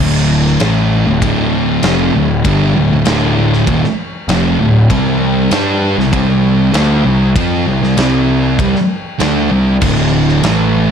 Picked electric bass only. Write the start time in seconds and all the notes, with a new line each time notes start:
0.00 D1
0.61 A1
1.07 D1
1.22 D1
1.84 F1
2.14 D1
2.45 G1
2.75 D1
2.90 D1
3.06 D1
3.67 D#1
4.28 F1
4.59 D1
4.90 C2
5.52 G2
5.97 C2
6.13 C2
6.74 D2
7.06 C2
7.35 F2
7.68 C2
7.82 C2
7.97 C2
8.59 C2
9.20 D2
9.51 C2
9.82 D1
10.43 A1